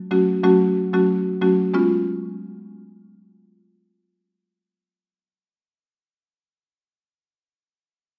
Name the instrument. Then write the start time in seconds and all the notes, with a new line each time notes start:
marimba
0.11 F#3 A3 C#4 F#4
0.43 F#3 A3 C#4 F#4
0.93 F#3 A3 C#4 F#4
1.41 F#3 A3 C#4 F#4
1.74 G#3 B3 C#4 F4